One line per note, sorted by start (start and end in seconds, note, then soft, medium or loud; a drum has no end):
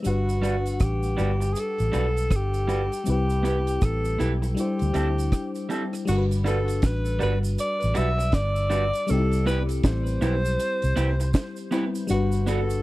0.03 0.77 G1 medium
0.03 3.01 G3 medium
0.03 3.02 D4 medium
0.03 3.03 F#5 medium
0.03 closed hi-hat medium
0.03 cabasa medium
0.07 0.85 F#4 loud
0.07 3.04 B4 medium
0.29 closed hi-hat soft
0.29 cabasa medium
0.42 0.55 G3 medium
0.42 0.55 D4 medium
0.42 0.55 F#4 medium
0.42 0.56 B4 medium
0.42 closed hi-hat medium
0.42 cabasa soft
0.66 closed hi-hat medium
0.66 cabasa medium
0.80 1.15 A1 medium
0.80 1.55 G4 loud
0.80 kick loud
0.80 cross-stick medium
0.80 closed hi-hat medium
0.80 cabasa medium
1.03 closed hi-hat soft
1.03 cabasa soft
1.17 1.53 G1 medium
1.17 1.30 G3 medium
1.17 1.30 D4 medium
1.17 1.31 F#4 medium
1.17 1.31 B4 medium
1.17 closed hi-hat medium
1.17 cabasa soft
1.41 muted clean electric guitar stroke soft
1.41 closed hi-hat soft
1.41 cabasa medium
1.53 1.61 G#4 medium
1.53 closed hi-hat loud
1.53 cabasa medium
1.60 2.38 A4 loud
1.78 1.93 A1 medium
1.78 closed hi-hat medium
1.78 cabasa soft
1.92 2.28 B1 medium
1.92 2.05 G3 medium
1.92 2.06 D4 medium
1.92 2.06 F#4 medium
1.92 2.06 B4 medium
1.92 closed hi-hat medium
1.92 cabasa soft
2.17 closed hi-hat soft
2.17 cabasa medium
2.30 2.88 G1 medium
2.30 kick loud
2.30 cross-stick loud
2.30 closed hi-hat medium
2.30 cabasa medium
2.36 3.09 G4 loud
2.54 closed hi-hat medium
2.54 cabasa soft
2.68 2.81 G3 medium
2.68 2.81 D4 medium
2.68 2.81 F#4 medium
2.68 2.81 B4 medium
2.68 closed hi-hat medium
2.68 cabasa soft
2.92 closed hi-hat soft
2.92 cabasa medium
3.04 3.79 C2 loud
3.04 4.53 G3 medium
3.04 4.54 C4 medium
3.04 4.55 E4 medium
3.04 closed hi-hat medium
3.04 cabasa medium
3.10 3.86 G4 loud
3.10 4.56 B4 medium
3.30 closed hi-hat soft
3.30 cabasa soft
3.43 3.56 B3 medium
3.43 3.57 E4 medium
3.43 3.57 G4 medium
3.43 3.57 B4 medium
3.43 closed hi-hat medium
3.43 cabasa medium
3.67 closed hi-hat medium
3.67 cabasa medium
3.82 4.17 A1 medium
3.82 4.34 A4 loud
3.82 kick loud
3.82 cross-stick loud
3.82 closed hi-hat medium
3.82 cabasa medium
4.05 closed hi-hat medium
4.05 cabasa soft
4.19 4.54 B1 medium
4.19 4.32 B3 medium
4.19 4.32 E4 medium
4.19 4.32 G4 medium
4.19 4.32 B4 medium
4.19 closed hi-hat medium
4.19 cabasa soft
4.42 muted clean electric guitar stroke soft
4.42 closed hi-hat soft
4.42 cabasa medium
4.55 6.03 G3 medium
4.55 6.04 D4 medium
4.55 6.05 E4 medium
4.55 closed hi-hat loud
4.55 cabasa medium
4.60 5.68 G4 medium
4.60 6.07 C5 medium
4.79 4.94 D2 medium
4.79 closed hi-hat medium
4.79 cabasa soft
4.94 5.29 D2 medium
4.94 5.07 G3 medium
4.94 5.07 C4 medium
4.94 5.07 E4 medium
4.94 5.08 A4 medium
4.94 closed hi-hat medium
4.94 cabasa soft
5.18 closed hi-hat soft
5.18 cabasa medium
5.32 kick medium
5.32 cross-stick loud
5.32 closed hi-hat medium
5.32 cabasa medium
5.55 closed hi-hat medium
5.55 cabasa soft
5.69 5.82 G3 medium
5.69 5.82 C4 medium
5.69 5.83 E4 medium
5.69 5.83 A4 medium
5.69 closed hi-hat medium
5.69 cabasa soft
5.93 cross-stick medium
5.93 closed hi-hat soft
5.93 cabasa medium
6.05 6.80 G1 loud
6.05 9.03 G3 medium
6.05 9.04 D4 medium
6.05 6.25 F#4 medium
6.05 9.05 F#4 medium
6.05 crash medium
6.05 cabasa medium
6.11 6.18 A#4 medium
6.18 9.10 B4 medium
6.31 closed hi-hat soft
6.31 cabasa medium
6.44 6.57 G3 medium
6.44 6.57 D4 medium
6.44 6.58 F#4 medium
6.44 6.87 A4 medium
6.44 6.58 B4 medium
6.44 closed hi-hat medium
6.44 cabasa medium
6.68 closed hi-hat medium
6.68 cabasa medium
6.82 7.18 A1 medium
6.82 7.22 B4 medium
6.82 kick loud
6.82 snare loud
6.82 closed hi-hat loud
6.82 cabasa medium
7.05 closed hi-hat medium
7.05 cabasa medium
7.19 7.56 G1 medium
7.19 7.32 G3 medium
7.19 7.33 D4 medium
7.19 7.33 F#4 medium
7.19 7.33 B4 medium
7.19 7.39 B4 medium
7.19 closed hi-hat medium
7.19 cabasa soft
7.43 closed hi-hat soft
7.43 cabasa medium
7.58 7.99 D5 loud
7.58 closed hi-hat loud
7.58 cabasa medium
7.81 7.96 A1 medium
7.81 closed hi-hat medium
7.81 cabasa medium
7.94 8.31 B1 medium
7.94 8.07 G3 medium
7.94 8.08 D4 loud
7.94 8.08 F#4 loud
7.94 8.08 B4 loud
7.94 8.35 E5 loud
7.94 closed hi-hat medium
7.94 cabasa soft
8.18 muted clean electric guitar stroke soft
8.18 closed hi-hat soft
8.18 cabasa medium
8.32 8.90 G1 loud
8.32 9.12 D5 loud
8.32 kick loud
8.32 snare loud
8.32 closed hi-hat medium
8.32 cabasa medium
8.56 closed hi-hat medium
8.56 cabasa soft
8.70 8.83 G3 medium
8.70 8.83 D4 medium
8.70 8.83 F#4 medium
8.70 8.84 B4 medium
8.70 closed hi-hat medium
8.70 cabasa soft
8.93 closed hi-hat medium
8.93 cabasa medium
9.07 9.81 C2 loud
9.07 11.67 G3 medium
9.07 11.68 C4 medium
9.07 9.18 D#4 medium
9.07 9.46 A4 loud
9.07 closed hi-hat medium
9.07 cabasa medium
9.13 11.70 G4 medium
9.17 11.72 E4 medium
9.32 closed hi-hat soft
9.32 cabasa medium
9.46 9.58 B3 medium
9.46 9.59 E4 medium
9.46 9.59 G4 medium
9.46 9.63 B4 medium
9.46 9.59 B4 medium
9.46 closed hi-hat medium
9.46 cabasa soft
9.69 closed hi-hat medium
9.69 cabasa medium
9.83 10.18 A1 medium
9.83 11.69 C5 loud
9.83 kick loud
9.83 snare loud
9.83 closed hi-hat loud
9.83 cabasa medium
10.07 closed hi-hat medium
10.07 cabasa soft
10.21 10.56 B1 loud
10.21 10.34 B3 medium
10.21 10.34 E4 medium
10.21 10.34 G4 medium
10.21 10.35 B4 medium
10.21 closed hi-hat medium
10.21 cabasa soft
10.45 closed hi-hat soft
10.45 cabasa medium
10.60 closed hi-hat loud
10.60 cabasa medium
10.82 10.96 C2 medium
10.82 closed hi-hat medium
10.82 cabasa soft
10.96 11.31 C2 medium
10.96 11.09 B3 medium
10.96 11.09 E4 medium
10.96 11.09 G4 loud
10.96 11.10 B4 loud
10.96 closed hi-hat loud
10.96 cabasa medium
11.20 muted clean electric guitar stroke soft
11.20 closed hi-hat soft
11.20 cabasa medium
11.34 kick loud
11.34 snare loud
11.34 closed hi-hat medium
11.34 cabasa medium
11.56 closed hi-hat medium
11.56 cabasa soft
11.71 12.06 G3 medium
11.71 11.84 B3 medium
11.71 12.10 C4 medium
11.71 11.84 E4 medium
11.71 12.10 E4 medium
11.71 11.84 G4 medium
11.71 11.85 B4 loud
11.71 12.11 B4 medium
11.71 closed hi-hat medium
11.71 cabasa soft
11.95 closed hi-hat medium
11.95 cabasa medium
12.07 12.81 G1 loud
12.07 12.82 G3 medium
12.07 12.82 D4 medium
12.07 12.50 F#4 medium
12.07 closed hi-hat medium
12.07 cabasa medium
12.12 12.82 F#4 medium
12.12 12.82 B4 medium
12.32 closed hi-hat soft
12.32 cabasa medium
12.46 12.59 B3 medium
12.46 12.59 D4 medium
12.46 12.60 F#4 medium
12.46 12.82 A4 medium
12.46 12.60 B4 medium
12.46 closed hi-hat medium
12.46 cabasa medium
12.70 closed hi-hat medium
12.70 cabasa medium